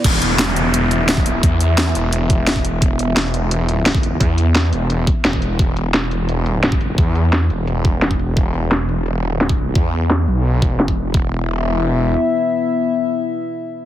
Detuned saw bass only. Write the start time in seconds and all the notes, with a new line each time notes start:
0.04 E1
1.03 D1
1.25 C1
1.43 E2
1.95 E1
2.82 E1
4.21 E2
4.73 E1
5.25 E1
5.59 E1
6.98 E2
7.50 E1
8.37 E1
9.36 D1
9.58 C1
9.76 E2
10.28 B1
10.62 E1
11.14 E1